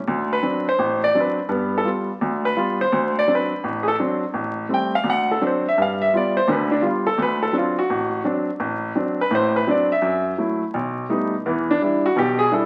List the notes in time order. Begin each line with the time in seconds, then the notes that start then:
0.08 D2
0.33 B4
0.42 F#3 C4 D4
0.69 C5
0.79 A1
1.04 D5
1.14 F#3 C4 D4
1.20 B4
1.49 G2 B3
1.78 A4
1.84 G3 B3 F4
2.21 D2
2.45 B4
2.57 G3 B3 F4
2.81 C5
2.92 D2
3.19 D5
3.27 F#3 C4 D4
3.35 B4
3.64 A1
3.83 G#4
3.88 A4
3.99 F#3 C4 D4
4.34 A1
4.69 G3 A3 C4
4.74 G5
4.95 F5
5.04 D2
5.10 F#5
5.31 A4
5.41 F#3 C4 D4
5.47 C5
5.68 E5
5.78 G2
5.82 F5
6.02 E5
6.13 G3 B3 F4 D5
6.37 C5
6.48 D2 D3 A#4
6.52 B4
6.71 D4
6.82 G3 B3 F4
6.87 F4
7.07 A4
7.18 D2
7.22 B4
7.43 A4
7.53 F#3 C4 D4
7.58 F4
7.79 F#4
7.90 A1
8.24 F#3 C4 D4
8.60 A1
8.95 F#3 C4 D4
9.21 B4
9.31 A1 A2
9.35 C5
9.56 B4
9.67 F#3 C4 D4 D5
9.92 E5
10.02 F#2
10.38 F#3 A3 E4
10.74 B1
11.09 G3 A3 B3 D#4
11.46 E2 E3
11.71 D4
11.81 G3 D4 E4
12.06 F#4
12.16 B1 B2 G4
12.39 G#4
12.51 G3 D4 E4 A4